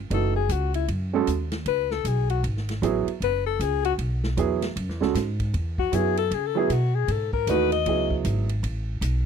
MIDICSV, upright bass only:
0, 0, Header, 1, 3, 480
1, 0, Start_track
1, 0, Tempo, 387347
1, 143, Time_signature, 4, 2, 24, 8
1, 11471, End_track
2, 0, Start_track
2, 0, Title_t, "Upright bass"
2, 0, Program_c, 0, 32
2, 128, Note_on_c, 0, 30, 83
2, 602, Note_off_c, 0, 30, 0
2, 608, Note_on_c, 0, 37, 89
2, 1082, Note_off_c, 0, 37, 0
2, 1093, Note_on_c, 0, 42, 75
2, 1565, Note_off_c, 0, 42, 0
2, 1579, Note_on_c, 0, 39, 78
2, 2048, Note_off_c, 0, 39, 0
2, 2054, Note_on_c, 0, 37, 78
2, 2526, Note_off_c, 0, 37, 0
2, 2534, Note_on_c, 0, 35, 86
2, 3006, Note_off_c, 0, 35, 0
2, 3015, Note_on_c, 0, 32, 84
2, 3487, Note_off_c, 0, 32, 0
2, 3492, Note_on_c, 0, 33, 81
2, 3783, Note_off_c, 0, 33, 0
2, 3970, Note_on_c, 0, 30, 77
2, 4445, Note_off_c, 0, 30, 0
2, 4453, Note_on_c, 0, 37, 87
2, 4926, Note_off_c, 0, 37, 0
2, 4935, Note_on_c, 0, 35, 83
2, 5407, Note_off_c, 0, 35, 0
2, 5415, Note_on_c, 0, 40, 89
2, 5887, Note_off_c, 0, 40, 0
2, 5896, Note_on_c, 0, 42, 84
2, 6057, Note_off_c, 0, 42, 0
2, 6057, Note_on_c, 0, 40, 51
2, 6203, Note_off_c, 0, 40, 0
2, 6211, Note_on_c, 0, 37, 70
2, 6367, Note_off_c, 0, 37, 0
2, 6375, Note_on_c, 0, 44, 99
2, 6846, Note_off_c, 0, 44, 0
2, 6861, Note_on_c, 0, 40, 85
2, 7329, Note_off_c, 0, 40, 0
2, 7337, Note_on_c, 0, 42, 86
2, 7806, Note_off_c, 0, 42, 0
2, 7817, Note_on_c, 0, 49, 82
2, 8286, Note_off_c, 0, 49, 0
2, 8297, Note_on_c, 0, 47, 92
2, 8765, Note_off_c, 0, 47, 0
2, 8771, Note_on_c, 0, 44, 89
2, 9242, Note_off_c, 0, 44, 0
2, 9255, Note_on_c, 0, 39, 80
2, 9724, Note_off_c, 0, 39, 0
2, 9737, Note_on_c, 0, 37, 79
2, 10204, Note_off_c, 0, 37, 0
2, 10219, Note_on_c, 0, 32, 97
2, 10685, Note_off_c, 0, 32, 0
2, 10693, Note_on_c, 0, 33, 94
2, 11161, Note_off_c, 0, 33, 0
2, 11168, Note_on_c, 0, 35, 93
2, 11471, Note_off_c, 0, 35, 0
2, 11471, End_track
3, 0, Start_track
3, 0, Title_t, "Muted upright bass strokes"
3, 3800, Note_on_c, 9, 29, 38
3, 3923, Note_off_c, 9, 29, 0
3, 11471, End_track
0, 0, End_of_file